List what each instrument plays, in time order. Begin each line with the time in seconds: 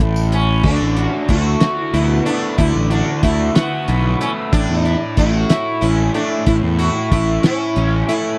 0.00 fingered electric bass A1, overdriven electric guitar A2 A3, kick
0.16 tambourine
0.32 sitar C#4, closed hi-hat
0.63 fingered electric bass D2, overdriven electric guitar D3, sitar D4, kick, crash
0.81 fingered electric bass A1
0.97 overdriven electric guitar F#4, closed hi-hat
1.09 sitar C#4
1.29 fingered electric bass D2, overdriven electric guitar A3, sitar F#4, kick, closed hi-hat
1.60 overdriven electric guitar F#4, snare, closed hi-hat
1.80 sitar E4
1.93 fingered electric bass D2, overdriven electric guitar B3, sitar E4, closed hi-hat
2.25 overdriven electric guitar A3, sitar D4, closed hi-hat
2.58 fingered electric bass D2, overdriven electric guitar D3, sitar E4, kick, closed hi-hat
2.76 fingered electric bass A1
2.90 sitar D4, overdriven electric guitar F#4, closed hi-hat
3.22 fingered electric bass D2, overdriven electric guitar A3, sitar E4, kick, closed hi-hat
3.55 sitar B3, overdriven electric guitar F#4, snare, closed hi-hat
3.88 fingered electric bass B1, overdriven electric guitar B3, closed hi-hat
4.20 overdriven electric guitar A3, sitar C#4, closed hi-hat
4.53 fingered electric bass A1, overdriven electric guitar A2, sitar D4, kick, closed hi-hat
4.69 fingered electric bass E2
4.85 overdriven electric guitar E4, closed hi-hat
5.17 fingered electric bass A1, overdriven electric guitar A3, sitar F#4, kick, closed hi-hat
5.50 overdriven electric guitar E4, snare, closed hi-hat
5.81 fingered electric bass A1, overdriven electric guitar C#4, sitar E4, closed hi-hat
6.14 overdriven electric guitar A3, sitar D4, closed hi-hat
6.46 fingered electric bass A1, overdriven electric guitar A2, sitar E4, kick, closed hi-hat
6.63 fingered electric bass E2
6.78 overdriven electric guitar E4, sitar F#4, closed hi-hat
7.11 fingered electric bass A1, overdriven electric guitar A3, sitar E4, kick, closed hi-hat
7.43 sitar C#4, overdriven electric guitar E4, snare, closed hi-hat
7.76 fingered electric bass A1, overdriven electric guitar C#4, closed hi-hat
8.09 overdriven electric guitar A3, sitar E4, closed hi-hat